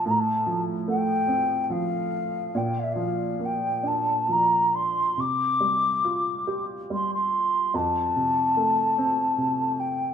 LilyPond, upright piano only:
\new Staff \with { instrumentName = "Upright piano" } { \clef bass \time 3/4 \key f \major \tempo 4 = 72 a,8 f8 a8 c'8 f4 | bes,8 f8 bes8 d'8 f4 | c8 g8 f'8 g'8 g4 | f,8 c8 a8 c'8 c4 | }